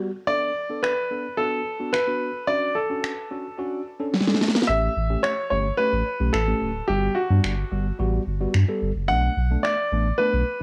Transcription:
Already playing: downlifter
0.27 B3 D4 A4 D5
0.70 B3 D4 A4
0.83 B4, finger snap
1.11 B3 D4 A4
1.37 B3 D4 F#4 A4
1.80 B3 D4 F#4
1.93 B4, finger snap
2.07 B3 D4 F#4
2.47 C#4 D4 F#4 D5
2.75 A4
2.90 C#4 D4 F#4
3.04 finger snap
3.31 C#4 D4 F#4
3.58 C#4 D4 F#4
4.00 C#4 D4 A4
4.14 snare
4.21 snare
4.27 C#4 D4 A4, snare
4.34 snare
4.41 snare
4.48 snare
4.55 snare
4.62 snare
4.67 A1 A3 C#4 G4 E5
4.96 A1
5.10 A3 C#4 G4
5.23 C#5, finger snap
5.50 G1 A3 C#4 G4 C#5
5.77 A3 C#4 G4 B4
5.93 A1
6.20 B1 A3 C#4 G4
6.33 A1 A4, finger snap
6.47 A3 C#4 G4
6.62 D1
6.88 G1 G3 B3 F#4 G4
7.15 F#4
7.30 G2 G3 B3 D4
7.44 G1, finger snap
7.72 G1 G3 B3 F#4
7.99 A1 G3 B3 F#4
8.27 G1
8.40 G3 B3 F#4
8.54 G2, finger snap
8.68 G3 B3 A4
8.82 G1
8.95 F#1
9.08 B1 A3 B3 D4 F#5
9.37 B1
9.51 A3 B3 D4
9.63 D5, finger snap
9.92 A1 A3 B3 D4
10.18 A3 B3 D4 B4
10.33 B1

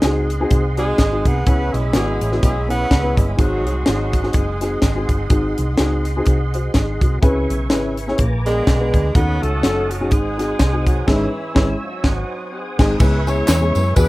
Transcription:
Already playing: G#2 C4 D#4 G#4 C5 D#5 F#5 G#5 C6
0.02 C#2 C4 D#4 F#4 G#4, snare, closed hi-hat
0.30 closed hi-hat
0.40 C4 D#4 F#4 G#4
0.51 C2, kick, closed hi-hat
0.77 G#3 C4 D#4 F#4 G#4, closed hi-hat
0.98 G#1, kick, snare, closed hi-hat
1.11 C4 D#4 F#4 G#4
1.25 C2 B3, kick, closed hi-hat
1.46 C#2 C#3 B3 C#4 E4 G#4 B4 C#5 E5 B5, kick, closed hi-hat
1.72 B1 G#3 G#4, closed hi-hat
1.93 G#1 G#3 B3 C#4 E4 F#4 G#4, snare, closed hi-hat
2.21 A1, closed hi-hat
2.31 B3 C#4 E4 F#4, snare
2.42 B1 G#3 B3 E4 G#4, kick, closed hi-hat
2.68 B3 C#4 E4 G#4 B4, closed hi-hat
2.91 C#2, kick, snare, closed hi-hat
3.03 B3 C#4 E4 B4
3.17 G1 G#3 G#4, kick, closed hi-hat
3.37 G#1 G#2 F#3 C4 D#4 F#4 G#4 D#5 F#5 C6, kick, closed hi-hat
3.66 C2 F#3, closed hi-hat
3.85 G#1 F#3 C4 D#4 F#4 G#4, snare, closed hi-hat
4.13 kick, closed hi-hat
4.23 C4 D#4 F#4 G#4, snare
4.33 F#1 G#3 C4 D#4 G#4, kick, closed hi-hat
4.61 C4 D#4 F#4 G#4, snare, closed hi-hat
4.82 G#1 G#3 C4 D#4 G#4, kick, snare, closed hi-hat
4.95 C4 D#4 F#4 G#4
5.09 G1, kick, closed hi-hat
5.29 G#1 G#2 C4 D#4 F#4 G#4, kick, closed hi-hat
5.58 C2, closed hi-hat
5.78 C#2 C4 D#4 F#4 G#4, snare, closed hi-hat
6.05 closed hi-hat
6.17 C4 D#4 F#4 G#4
6.26 C2, kick, closed hi-hat
6.54 F#4 C5, closed hi-hat
6.74 G#1 D#4 G#4, kick, snare, closed hi-hat
7.01 C2 C4 F#4, kick, closed hi-hat
7.22 C#2 C#3 C#4 E4 G#4 B4 C#5 E5 G#5 B5 C#6, kick, closed hi-hat
7.50 B1, closed hi-hat
7.70 G#1 C#4 E4 G#4 B4, snare, closed hi-hat
7.97 closed hi-hat
8.07 C#4 E4 G#4 C#5, snare
8.18 A#1 A#2 B4 D5 A#5 D6, kick, closed hi-hat
8.46 G#3 B3 D4 G#4 A#4, snare, closed hi-hat
8.67 B1, kick, snare, closed hi-hat
8.80 B3 D4 G#4 B4
8.94 D2, kick, closed hi-hat
9.15 D#2 D#3 B3 C#4 D#4 F#4 A4 B4 C#5 D#5 F#5 A5 D#6, kick, closed hi-hat
9.41 C#2 A3 C#4 F#4 A4, closed hi-hat
9.63 F#1 C#4 D#4 F#4 A4, snare, closed hi-hat
9.91 F#3 F#4, closed hi-hat
10.00 C#4 D#4 F#4 G#4
10.11 G#1 G#2 G#3 C4 D#4 G#4 C5 G#5, kick, closed hi-hat
10.37 C4 D#4 F#4 G#4, snare, closed hi-hat
10.59 C2, kick, snare, closed hi-hat
10.72 C4 D#4 F#4 G#4
10.87 F#3, kick, closed hi-hat
11.06 G#1 G#2 E3 G#3 C#4 E4 G#4 C#5 E5 E6, kick, snare, crash
11.55 G#1 E3 G#3 C#4 E4, kick, snare
11.83 F#3 C4 D#4 F#4
12.04 G#1 C5 D#5 F#5 D#6, kick, snare
12.52 C4 D#4 G#4
12.78 G#1 G#3 C4 D#4 G#4, kick, snare, crash
12.99 C#2 C#3 G#3 B3 C#4 E4 G#4 B4 E5 G#5 C#6, kick, crash, tambourine
13.26 G#3 B3 C#4 E4 G#4 C#5, ride, tambourine
13.48 E2, snare, clap, ride, tambourine
13.61 G#3 B3 C#4 E4 G#4
13.75 F#2, ride, tambourine
13.96 E2 E3 B3 D4 E4 F#4 G#4 B4 F#5 D6, kick, ride, tambourine

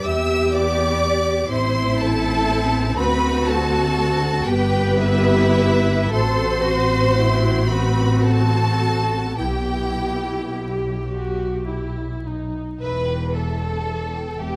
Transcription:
0.04 E2 B3 G4 E5 E6
0.53 D5 D6
1.49 A1 C4 E4 C5 C6
2.00 A4 A5
2.97 D2 F#4 B4 B5
3.47 A4 A5
4.46 G1 B3 G4 B4 G5
4.98 E4 E5
6.12 A1 C4 F#4 A4 C5 C6
6.66 F#4
7.18 E4
7.70 F#4 B4 B5
8.24 A4 A5
9.37 B1 B3 E4 G4 G5
11.09 F#4
11.66 E4
12.25 D#4
12.80 E1 E2 B4 E5
13.07 G5
13.34 A4 E5
13.61 G5
13.87 E5
14.12 G5
14.38 E1 E2 B3 G4 E5

